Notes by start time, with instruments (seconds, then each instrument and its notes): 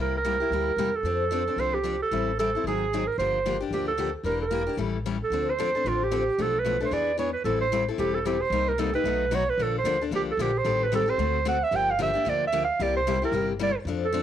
Already playing: upright bass C2, steel-string acoustic guitar C3 G3
0.00 steel-string acoustic guitar A#3 E4 G4, clarinet A#4
0.17 clarinet A#4
0.24 steel-string acoustic guitar C3 G3 A#3 E4 G4
0.40 steel-string acoustic guitar A#3 E4 G4
0.50 upright bass D2, steel-string acoustic guitar C3 G3 A#3 E4 G4
0.76 upright bass E2, steel-string acoustic guitar C3 G3 A#3 E4 G4
0.95 clarinet A4
1.03 upright bass F2, steel-string acoustic guitar F3 C4 D4 A4
1.31 steel-string acoustic guitar F3 C4 D4 A4
1.47 steel-string acoustic guitar C4 D4 A4
1.56 upright bass C2, steel-string acoustic guitar F3 C4 D4 A4, clarinet C5
1.74 clarinet G4
1.84 steel-string acoustic guitar F3 C4 D4 A4
2.02 clarinet A4
2.11 upright bass A1, steel-string acoustic guitar E3 G3 C4 E4 A4
2.39 steel-string acoustic guitar E3 G3 C4 E4 A4, clarinet A4
2.55 steel-string acoustic guitar C4 E4 A4
2.64 upright bass G#1, steel-string acoustic guitar D#3 F#3 C4 D#4, clarinet G#4
2.68 steel-string acoustic guitar G#4
2.93 steel-string acoustic guitar D#3 F#3 C4 D#4 G#4
3.07 clarinet A#4
3.18 upright bass G1, steel-string acoustic guitar D3 F3 A#3 D4 G4, clarinet C5
3.46 steel-string acoustic guitar D3 F3 A#3 D4 G4
3.60 steel-string acoustic guitar A#3 D4 G4
3.71 upright bass D2, steel-string acoustic guitar D3 F3 A#3 D4 G4, clarinet G4
3.88 clarinet A4
3.98 steel-string acoustic guitar D3 F3 A#3 D4 G4
4.23 upright bass E1, steel-string acoustic guitar E3 A#3 D4 G4, clarinet A#4
4.42 clarinet A#4
4.51 steel-string acoustic guitar E3 A#3 D4 G4
4.67 steel-string acoustic guitar A#3 D4 G4
4.77 upright bass A1, steel-string acoustic guitar E3 G3 C#4 E4 A4
5.06 steel-string acoustic guitar E3 G3 C#4 E4 A4
5.24 clarinet A4
5.30 upright bass D2, steel-string acoustic guitar D3 F3 C4 D4 A4
5.50 clarinet C5
5.59 steel-string acoustic guitar D3 F3 C4 D4 A4
5.75 steel-string acoustic guitar C4 D4 A4
5.84 upright bass A1, steel-string acoustic guitar D3 F3 C4 D4 A4, clarinet F4
6.04 clarinet G4
6.11 steel-string acoustic guitar D3 F3 C4 D4 A4
6.38 upright bass B1, steel-string acoustic guitar B2 F3 A3 D4 A4, clarinet A4
6.59 clarinet B4
6.65 steel-string acoustic guitar B2 F3 A3 D4 A4
6.80 steel-string acoustic guitar A3 D4 A4, clarinet B4
6.85 clarinet C5
6.91 upright bass E2, steel-string acoustic guitar E3 B3 D4 G#4, clarinet D5
7.18 steel-string acoustic guitar E3 B3 D4 G#4, clarinet C#5
7.33 clarinet B4
7.44 upright bass A1, steel-string acoustic guitar E3 G3 C4 E4 A4, clarinet A4
7.61 clarinet C5
7.72 steel-string acoustic guitar E3 G3 C4 E4 A4
7.89 steel-string acoustic guitar C4 E4 A4
7.98 upright bass E1, steel-string acoustic guitar E3 G3 C4 E4 A4, clarinet G4
8.14 clarinet A4
8.25 steel-string acoustic guitar E3 G3 C4 E4 A4, clarinet G4
8.41 clarinet C5
8.50 upright bass C2, steel-string acoustic guitar C3 G3 A#3 D#4 G4
8.68 clarinet A#4
8.78 steel-string acoustic guitar C3 G3 A#3 D#4 G4, clarinet A4
8.93 steel-string acoustic guitar A#3 D#4 G4, clarinet B4
9.04 upright bass B1, steel-string acoustic guitar B2 F#3 A3 D#4 F#4
9.31 steel-string acoustic guitar B2 F#3 A3 D#4 F#4, clarinet C#5
9.49 clarinet B4
9.58 upright bass A#1, steel-string acoustic guitar D3 F3 A#3 D4 A4
9.63 clarinet A4
9.78 clarinet C5
9.84 upright bass D2, steel-string acoustic guitar D3 F3 A#3 D4 A4
10.01 steel-string acoustic guitar A#3 D4 A4
10.11 upright bass C2, steel-string acoustic guitar D3 F3 A#3 D4 A4
10.16 clarinet G4
10.31 clarinet A4
10.37 upright bass A#1, steel-string acoustic guitar D3 F3 A#3 D4 A4
10.41 clarinet G4
10.58 clarinet C5
10.65 upright bass A1, steel-string acoustic guitar D#3 G3 C4 G4 A4
10.83 clarinet B4
10.92 steel-string acoustic guitar D#3 G3 C4 G4 A4, clarinet A4
11.06 steel-string acoustic guitar C4 G4 A4, clarinet C5
11.18 upright bass D2, steel-string acoustic guitar D3 A3 C4 F#4 A4
11.45 steel-string acoustic guitar D3 A3 C4 F#4 A4, clarinet F#5
11.63 clarinet E5
11.71 upright bass G1, steel-string acoustic guitar D3 F3 A#3 D4 G4
11.75 clarinet G5
11.90 clarinet F5
11.99 steel-string acoustic guitar D3 F3 A#3 D4 G4, clarinet E5
12.14 steel-string acoustic guitar A#3 D4 G4
12.25 upright bass D2, steel-string acoustic guitar D3 F3 A#3 D4 G4
12.29 clarinet D5
12.47 clarinet E5
12.52 steel-string acoustic guitar D3 F3 A#3 D4 G4
12.64 clarinet F5
12.79 upright bass C2, steel-string acoustic guitar C3 G3 A#3 E4 G4, clarinet D5
12.97 clarinet C5
13.07 steel-string acoustic guitar C3 G3 A#3 E4 G4
13.22 steel-string acoustic guitar A#3 E4 G4, clarinet A#4
13.32 upright bass G1, steel-string acoustic guitar C3 G3 A#3 E4 G4
13.59 steel-string acoustic guitar C3 G3 A#3 E4 G4, clarinet D5
13.85 upright bass F2, steel-string acoustic guitar F3 C4 D4 A4
14.05 clarinet A4
14.12 steel-string acoustic guitar F3 C4 D4 A4